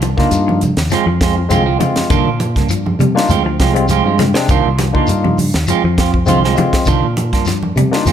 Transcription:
Already playing: C2
0.02 F3, muted clean electric guitar stroke, closed hi-hat, high conga, shekere
0.17 A#3 D4 D#4 F4, kick, snare, low conga
0.31 G2, muted clean electric guitar stroke, closed hi-hat, high conga, shekere
0.48 muted clean electric guitar stroke, high conga
0.61 closed hi-hat, high conga, low conga, shekere
0.77 D#2, muted clean electric guitar stroke, snare, closed hi-hat
0.90 F3 G#3 C4 F4, muted fingered electric bass stroke, snare, closed hi-hat, high conga, shekere
1.06 F2 F3, muted clean electric guitar stroke
1.21 G#3 C4 F4, kick, snare, closed hi-hat, shekere
1.36 C4 F4, muted clean electric guitar stroke
1.49 C2 D3 G#3 C4 F4, muted clean electric guitar stroke, closed hi-hat, high conga, shekere
1.66 F3 C4 F4
1.79 F3 G#3 C4 F4, muted clean electric guitar stroke, closed hi-hat, high conga, low conga, shekere
1.96 muted clean electric guitar stroke, snare, closed hi-hat, high conga
2.10 C2 D3 D#3 A#3 D4 F4, kick, closed hi-hat, shekere
2.25 A#2
2.40 muted clean electric guitar stroke, closed hi-hat, high conga, shekere
2.56 G2 A#3 D4, kick, snare, closed hi-hat, low conga
2.69 F3, muted clean electric guitar stroke, closed hi-hat, high conga, shekere
2.86 muted clean electric guitar stroke, high conga
2.99 C3 G3, closed hi-hat, high conga, low conga, shekere
3.15 A#3 D4 D#4 F4, muted clean electric guitar stroke, snare
3.29 D2 F3 G#3 C4 F4, closed hi-hat, high conga, shekere
3.45 F3, muted clean electric guitar stroke
3.60 C2 F3 G#3 C4 F4, kick, snare, closed hi-hat, shekere
3.74 G3 G#3 C4 F4, muted clean electric guitar stroke, closed hi-hat
3.88 F3 G#3 C4 F4, closed hi-hat, high conga, shekere
4.04 G2 F3 G#3 C4 F4
4.19 G#3 C4 F4, muted clean electric guitar stroke, snare, closed hi-hat, high conga, low conga, shekere
4.34 C3 G#3 C4 D4, muted clean electric guitar stroke, snare, closed hi-hat
4.48 C2 D#3 A#3 D4 F4, kick, closed hi-hat, high conga, shekere
4.65 C2
4.79 F3, muted clean electric guitar stroke, snare, closed hi-hat, high conga, shekere
4.93 A#3 D4 D#4 F4, kick, low conga
4.97 A#3
5.07 G2, muted clean electric guitar stroke, closed hi-hat, high conga, shekere
5.24 C3, muted clean electric guitar stroke, high conga
5.38 open hi-hat, high conga, low conga, shekere
5.54 D#2, muted clean electric guitar stroke, snare, closed hi-hat
5.67 F3 G#3 C4 F4, muted fingered electric bass stroke, closed hi-hat, shekere
5.84 F2 F3, muted clean electric guitar stroke
5.98 F3 C4 F4, muted clean electric guitar stroke, kick, snare, closed hi-hat, shekere
6.12 C4 F4, muted clean electric guitar stroke, kick
6.26 C2 D3 F3 G#3 C4 F4, closed hi-hat, high conga, shekere
6.44 F3 G#3 C4 F4, snare
6.55 F3 G#3 C4 F4, muted clean electric guitar stroke, closed hi-hat, high conga, low conga, shekere
6.73 muted clean electric guitar stroke, kick, snare, closed hi-hat
6.86 C2 D3 D#3 D4 F4, muted clean electric guitar stroke, kick, closed hi-hat, high conga, shekere
7.03 A#2
7.17 muted clean electric guitar stroke, closed hi-hat, high conga, shekere
7.33 G2 A#3 D4 F4, kick, snare, closed hi-hat
7.45 F3, muted clean electric guitar stroke, snare, closed hi-hat, high conga, shekere
7.63 muted clean electric guitar stroke, high conga
7.76 C3 G3, closed hi-hat, high conga, low conga, shekere
7.91 A#3 D4 D#4 F4, muted clean electric guitar stroke, snare
8.05 D2 F3 G#3 C4 F4, closed hi-hat, high conga, shekere

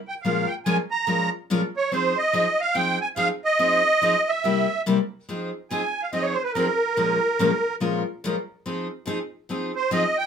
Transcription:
0.08 G5
0.22 A#2 F3 G#3 C#4 F4 A#4 F5
0.47 G5
0.66 A#2 F3 G#3 C#4 F4 A#4 G#5
0.91 A#5
1.07 A#2 F3 G#3 C#4 F4 A#4
1.50 A#2 F3 G#3 C#4 F4 A#4
1.77 C#5
1.92 F3 C4 D#4 G#4 C5
2.18 D#5
2.33 F3 C4 D#4 G#4
2.61 F5
2.74 F3 C4 D#4 G#4 G5
3.01 G#5
3.16 F3 C4 D#4 G#4 F5
3.45 D#5
3.59 F3 C4 D#4 G#4
4.02 F3 C4 D#4 G#4
4.28 E5
4.44 C3 G3 A#3 E4 G4
4.86 C3 G3 A#3 E4 G4
5.29 F3 C4 D#4 G#4
5.70 F3 C4 D#4 G#4 G#5
6.02 F5
6.13 F3 C4 D#4 G#4 D#5
6.22 C#5
6.32 C5
6.43 B4
6.53 F3 C4 D#4 A#4
6.57 G#4
6.97 A#2 F3 G#3 C#4 F4 A#4
7.39 A#2 F3 G#3 C#4 F4 A#4
7.80 A#2 F3 G#3 C#4 F4 A#4
8.24 A#2 F3 G#3 C#4 F4 A#4
8.66 F3 C4 D#4 G#4
9.06 F3 C4 D#4 G#4
9.49 F3 C4 D#4 G#4
9.75 C5
9.91 F3 C4 D#4 G#4 D#5
10.17 G5

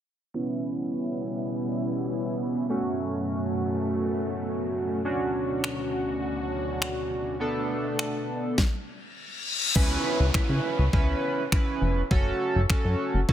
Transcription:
0.34 B2 G3 B3 C#4 E4
2.69 F#2 A3 C#4 F#4
5.05 D2 C#4 D4 F#4
5.64 finger snap
6.82 finger snap
7.40 B2 A3 B3 D4 A4
7.99 finger snap
8.58 kick, snare, reverse cymbal
9.76 C#2 C#4 E4 B4, kick, crash, downlifter
10.20 C#2
10.34 C#3 C#4 E4 B4, finger snap, kick
10.49 C#3
10.79 C#2
10.93 C#2 C#4 E4 B4, kick
11.52 C#4 E4 B4, finger snap, kick
11.81 F1
12.11 F#1 C#4 F#4 A4, kick
12.55 F#1
12.70 C#4 F#4 A4, finger snap, kick
12.85 F#2
13.14 F#1
13.29 F#1 C#4 F#4 A4, kick

